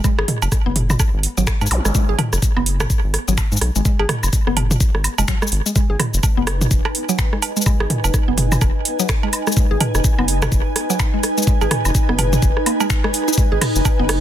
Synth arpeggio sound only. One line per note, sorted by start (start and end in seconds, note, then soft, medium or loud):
0.04 0.14 G#3 loud
0.18 0.25 G#4 loud
0.28 0.34 D#3 medium
0.66 0.73 B3 loud
1.38 1.40 F#3 loud
1.61 1.64 G#3 medium
1.85 1.89 G#3 medium
1.95 2.04 G#3 loud
2.09 2.15 G#4 loud
2.19 2.25 D#3 medium
2.57 2.63 B3 loud
3.28 3.31 F#3 loud
3.52 3.54 G#3 medium
3.76 3.80 G#3 medium
3.85 3.95 G#3 loud
3.99 4.06 G#4 loud
4.09 4.15 D#3 medium
4.47 4.54 B3 loud
5.18 5.23 G#3 medium
5.28 5.32 F#3 medium
5.42 5.45 G#3 medium
5.66 5.70 G#3 medium
5.76 5.85 G#3 loud
5.90 5.96 G#4 loud
5.99 6.06 D#3 medium
6.37 6.44 B3 loud
7.09 7.12 F#3 loud
7.33 7.35 G#3 medium
7.57 7.61 G#3 medium
7.66 7.76 G#3 loud
7.80 7.87 G#4 loud
7.90 7.96 D#3 medium
8.28 8.35 B3 loud
8.99 9.02 F#3 loud
9.23 9.26 G#3 medium
9.47 9.51 G#3 medium
9.57 9.66 G#3 loud
9.71 9.77 G#4 loud
9.80 9.87 D#3 medium
10.18 10.25 B3 loud
10.90 10.92 F#3 loud
11.14 11.16 G#3 medium
11.38 11.42 G#3 medium
11.47 11.57 G#3 loud
11.61 11.68 G#4 loud
11.71 11.77 D#3 medium
12.09 12.15 B3 loud
12.66 12.70 A#3 medium
12.80 12.85 G#3 medium
13.04 13.07 G#3 medium
13.28 13.34 D#4 loud
13.38 13.47 G#3 loud
13.52 13.58 G#4 loud
13.99 14.06 B3 loud